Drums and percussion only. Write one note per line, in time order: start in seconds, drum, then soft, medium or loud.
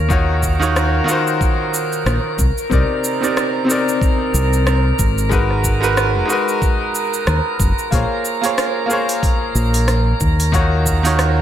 0.10 kick loud
0.10 shaker soft
0.43 kick medium
0.43 shaker medium
0.62 shaker soft
0.76 cross-stick loud
0.76 shaker soft
1.09 shaker medium
1.27 shaker soft
1.41 kick loud
1.41 shaker soft
1.74 shaker medium
1.93 shaker soft
2.06 cross-stick loud
2.06 shaker soft
2.39 kick loud
2.39 shaker medium
2.58 shaker soft
2.71 kick loud
2.71 shaker soft
3.04 shaker medium
3.24 shaker soft
3.37 cross-stick loud
3.37 shaker soft
3.70 shaker medium
3.89 shaker soft
4.02 kick loud
4.02 shaker soft
4.35 shaker medium
4.53 shaker soft
4.67 cross-stick loud
4.67 shaker soft
4.99 kick loud
4.99 shaker medium
5.18 shaker soft
5.32 kick loud
5.32 shaker soft
5.51 cross-stick soft
5.64 kick medium
5.64 shaker medium
5.83 shaker soft
5.97 cross-stick loud
5.97 shaker soft
6.30 shaker medium
6.49 shaker soft
6.62 kick loud
6.62 shaker soft
6.95 shaker medium
7.14 shaker soft
7.27 cross-stick loud
7.27 shaker soft
7.60 kick loud
7.60 shaker medium
7.79 shaker soft
7.92 kick loud
7.92 open hi-hat soft
7.92 shaker soft
8.25 shaker medium
8.44 open hi-hat soft
8.44 shaker soft
8.58 cross-stick loud
8.58 open hi-hat soft
8.58 shaker soft
8.90 shaker medium
9.09 open hi-hat medium
9.09 shaker soft
9.23 kick loud
9.23 open hi-hat soft
9.23 shaker soft
9.56 shaker medium
9.74 open hi-hat medium
9.74 shaker soft
9.88 cross-stick medium
9.88 open hi-hat soft
9.88 shaker soft
10.21 kick loud
10.21 shaker medium
10.40 open hi-hat medium
10.40 shaker soft
10.53 kick loud
10.53 open hi-hat soft
10.53 shaker soft
10.86 kick medium
10.86 shaker medium
11.05 open hi-hat medium
11.05 shaker soft
11.19 cross-stick loud
11.19 open hi-hat soft
11.19 shaker soft